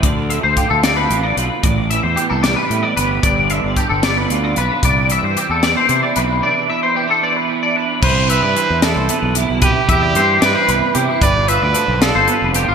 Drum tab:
CC |------|------|------|------|
HH |xxxxxx|xxxxxx|xxxxxx|xxxxxx|
SD |---o--|---o--|---o--|---o--|
BD |o-o---|o-----|o-o---|o-----|

CC |------|x-----|------|------|
HH |------|-xxxxx|xxxxxx|xxxxxx|
SD |------|---o--|---o--|---o--|
BD |------|o-----|oo----|o-----|